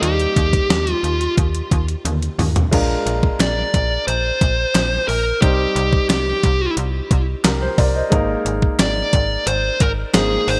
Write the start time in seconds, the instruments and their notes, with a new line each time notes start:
Already playing: grand piano G3 A#3 D#4 C5
0.02 fm bass D#2, lead electric guitar G4, closed hi-hat
0.20 closed hi-hat
0.36 fm bass D#2, kick, closed hi-hat
0.53 kick, closed hi-hat
0.70 fm bass D#2, snare, closed hi-hat
0.87 lead electric guitar F4, closed hi-hat
1.03 fm bass D#2, closed hi-hat
1.21 closed hi-hat
1.38 fm bass D#2, kick, closed hi-hat
1.55 closed hi-hat
1.71 fm bass D#2, kick, closed hi-hat
1.88 closed hi-hat
2.05 fm bass D#2, closed hi-hat, high tom
2.22 closed hi-hat
2.39 fm bass D#2, mid tom, open hi-hat
2.56 closed hi-hat, floor tom
2.71 fm bass A#1, grand piano G#3 D4 F4 A#4, kick, closed hi-hat, crash
3.06 fm bass A#1, closed hi-hat
3.23 kick
3.40 fm bass A#1, lead electric guitar D5, snare, clap, closed hi-hat
3.74 fm bass A#1, kick, closed hi-hat
4.07 fm bass A#1, lead electric guitar C5, closed hi-hat
4.41 fm bass A#1, kick, closed hi-hat
4.75 fm bass A#1, snare, clap, closed hi-hat
5.08 fm bass A#1, lead electric guitar A#4, open hi-hat
5.41 fm bass C2, grand piano G3 C4 D#4 C5, lead electric guitar G4, kick, closed hi-hat
5.76 fm bass C2, closed hi-hat
5.93 kick
6.09 fm bass C2, lead electric guitar G4, snare, clap, closed hi-hat
6.43 fm bass C2, kick, closed hi-hat
6.77 fm bass C2, closed hi-hat
7.11 fm bass C2, kick, closed hi-hat
7.44 fm bass C2, grand piano G4 A#4, snare, clap, closed hi-hat
7.62 grand piano C5
7.78 fm bass C2, grand piano A#4 D5, kick, open hi-hat
7.95 grand piano C5 D#5
8.10 fm bass G#1, grand piano G#3 A#3 D#4 A#4, kick, closed hi-hat
8.45 fm bass G#1, closed hi-hat
8.62 kick
8.79 fm bass G#1, lead electric guitar D5, snare, clap, closed hi-hat
9.13 fm bass G#1, kick, closed hi-hat
9.47 fm bass G#1, lead electric guitar C5, closed hi-hat
9.80 fm bass G#1, lead electric guitar A#4, kick, closed hi-hat
10.14 fm bass G#1, grand piano G#3 A#3 D#4 C5, lead electric guitar G#4, snare, clap, closed hi-hat
10.48 fm bass G#1, lead electric guitar C5, open hi-hat